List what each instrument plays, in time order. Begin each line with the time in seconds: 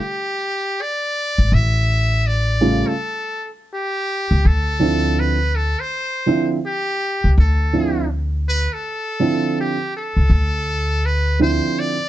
Already playing: muted trumpet G4
0.81 muted trumpet D5
1.38 upright bass G#1
1.52 upright bass A1, muted trumpet E5
2.27 muted trumpet D5
2.61 upright piano C#3 G3 A3 F4
2.87 muted trumpet A4
3.74 muted trumpet G4
4.31 upright bass C#2
4.45 upright bass D2, muted trumpet A4
4.80 upright piano D3 F3 C4 E4
5.20 muted trumpet B4
5.56 muted trumpet A4
5.80 muted trumpet C5
6.26 upright piano D3 F3 C4 E4
6.66 muted trumpet G4
7.24 upright bass C#2
7.38 upright bass D2, muted trumpet A4
7.73 upright piano D3 F3 C4 E4
8.49 muted trumpet B4
8.73 muted trumpet A4
9.20 upright piano D3 F3 C4 E4
9.61 muted trumpet G4
9.97 muted trumpet A4
10.16 upright bass C#2
10.29 upright bass D2
11.06 muted trumpet B4
11.39 upright piano D3 F3 C4 E4, muted trumpet C5
11.79 muted trumpet D5